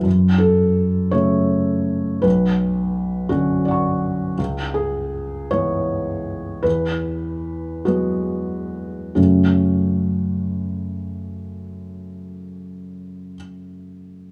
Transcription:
<<
  \new Staff \with { instrumentName = "Felt piano" } { \time 6/8 \key fis \minor \tempo 4. = 52 << { r2. | r2 <d'' fis'' cis'''>4 | r2. | r2. |
<fis, cis a cis'>2.~ | <fis, cis a cis'>2. | } \\ { r8 a'4 cis''4. | b'4. fis'4. | r8 gis'4 cis''4. | b'4. fis'4. |
fis'2.~ | fis'2. | } >> }
  \new Staff \with { instrumentName = "Felt piano" } { \clef bass \time 6/8 \key fis \minor fis,4. <cis fis a>4. | b,,4. <d fis cis'>4. | cis,4. <e gis b>4. | e,4. <fis gis b>4. |
r2. | r2. | }
>>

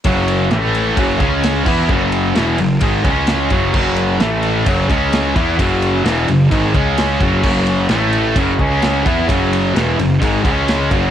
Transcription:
<<
  \new Staff \with { instrumentName = "Distorted electric guitar" } { \clef bass \time 4/4 \key fis \minor \tempo 4 = 130 <fis, cis fis>4 <a, e a>4 <fis, cis fis>8 <cis gis cis'>4 <e b e'>8 | <fis, cis fis>4 <e, b, e>8 <fis, cis>8 <gis, dis gis>8 <cis gis cis'>4 <fis, cis fis>8 | <fis, cis fis>4 <a, e a>4 <fis, cis fis>8 <cis gis cis'>4 <e b e'>8 | <fis, cis fis>4 <e, b, e>8 <fis, cis>8 <gis, dis gis>8 <cis gis cis'>4 <fis, cis fis>8 |
<fis, cis fis>4 <a, e a>4 <fis, cis fis>8 <cis gis cis'>4 <e b e'>8 | <fis, cis fis>4 <e, b, e>8 <fis, cis>8 <gis, dis gis>8 <cis gis cis'>4 <fis, cis fis>8 | }
  \new Staff \with { instrumentName = "Distorted electric guitar" } { \clef bass \time 4/4 \key fis \minor <fis, cis fis>4 <a, e a>4 <fis, cis fis>8 <cis gis cis'>4 <e b e'>8 | <fis, cis fis>4 <e, b, e>8 <fis, cis>8 <gis, dis gis>8 <cis gis cis'>4 <fis, cis fis>8 | <fis, cis fis>4 <a, e a>4 <fis, cis fis>8 <cis gis cis'>4 <e b e'>8 | <fis, cis fis>4 <e, b, e>8 <fis, cis>8 <gis, dis gis>8 <cis gis cis'>4 <fis, cis fis>8 |
<fis, cis fis>4 <a, e a>4 <fis, cis fis>8 <cis gis cis'>4 <e b e'>8 | <fis, cis fis>4 <e, b, e>8 <fis, cis>8 <gis, dis gis>8 <cis gis cis'>4 <fis, cis fis>8 | }
  \new Staff \with { instrumentName = "Distorted electric guitar" } { \clef bass \time 4/4 \key fis \minor <fis, cis fis>4 <a, e a>4 <fis, cis fis>8 <cis gis cis'>4 <e b e'>8 | <fis, cis fis>4 <e, b, e>8 <fis, cis>8 <gis, dis gis>8 <cis gis cis'>4 <fis, cis fis>8 | <fis, cis fis>4 <a, e a>4 <fis, cis fis>8 <cis gis cis'>4 <e b e'>8 | <fis, cis fis>4 <e, b, e>8 <fis, cis>8 <gis, dis gis>8 <cis gis cis'>4 <fis, cis fis>8 |
<fis, cis fis>4 <a, e a>4 <fis, cis fis>8 <cis gis cis'>4 <e b e'>8 | <fis, cis fis>4 <e, b, e>8 <fis, cis>8 <gis, dis gis>8 <cis gis cis'>4 <fis, cis fis>8 | }
  \new Staff \with { instrumentName = "Picked electric bass" } { \clef bass \time 4/4 \key fis \minor fis,,4 a,,4 fis,,8 cis,4 e,8 | fis,,4 e,,8 fis,,8 gis,,8 cis,4 fis,,8 | fis,,4 a,,4 fis,,8 cis,4 e,8 | fis,,4 e,,8 fis,,8 gis,,8 cis,4 fis,,8 |
fis,,4 a,,4 fis,,8 cis,4 e,8 | fis,,4 e,,8 fis,,8 gis,,8 cis,4 fis,,8 | }
  \new DrumStaff \with { instrumentName = "Drums" } \drummode { \time 4/4 <bd cymr>8 cymr8 <cymr sn>8 cymr8 <bd cymr>8 <bd cymr>8 <cymr sn>8 <cymc bd>8 | bd8 cymr8 <cymr sn>8 cymr8 <bd cymr>8 <bd cymr>8 <cymr sn>8 <bd cymr>8 | <cymc bd>8 cymr8 <cymr sn>8 cymr8 <bd cymr>8 <bd cymr>8 <cymr sn>8 <bd cymr>8 | <bd cymr>8 cymr8 <cymr sn>8 cymr8 <bd cymr>8 <bd cymr>8 <cymr sn>8 <bd cymr>8 |
<cymc bd>8 cymr8 <cymr sn>8 cymr8 <bd cymr>8 <bd cymr>8 <cymr sn>8 <bd cymr>8 | <bd cymr>8 cymr8 <cymr sn>8 cymr8 <bd cymr>8 <bd cymr>8 <cymr sn>8 <bd cymr>8 | }
>>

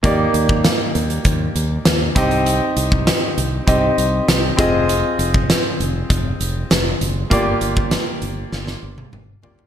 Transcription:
<<
  \new Staff \with { instrumentName = "Grand piano" } { \time 4/4 \key ees \major \tempo 4 = 99 <bes ees' g' d''>2.~ <bes ees' g' d''>8 <c' ees' g' ees''>8~ | <c' ees' g' ees''>2 <c' ees' g' ees''>4. <c' f' aes' ees''>8~ | <c' f' aes' ees''>2.~ <c' f' aes' ees''>8 r8 | <bes f' g' d''>2.~ <bes f' g' d''>8 <bes f' g' d''>8 | }
  \new Staff \with { instrumentName = "Fingered electric bass" } { \clef bass \time 4/4 \key ees \major ees,8 ees,8. r16 ees,8 ees,8 ees,8 ees,8 c,8~ | c,8 c,8. r16 c,8 c,8 c,8 c,8 f,,8~ | f,,8 f,,8. r16 f,,8 f,,8 f,,8 f,,8 ges,,8 | g,,8 g,,8. r16 g,,8 g,,8 g,,8 g,,8 ges,,8 | }
  \new DrumStaff \with { instrumentName = "Drums" } \drummode { \time 4/4 <hh bd>8 hh16 bd16 <hh sn>8 hh16 hh16 <hh bd>8 hh8 <hh sn>8 <hh bd>16 hh16 | hh8 hh16 bd16 <hh sn>8 hh8 <hh bd>8 hh8 <hh sn>8 <hh bd>8 | hh8 hh16 bd16 <hh sn>8 hh8 <hh bd>8 hh8 <hh sn>8 hh8 | <hh bd>8 hh16 bd16 <hh sn>8 hh8 sn16 sn8 tommh16 toml8 tomfh16 tomfh16 | }
>>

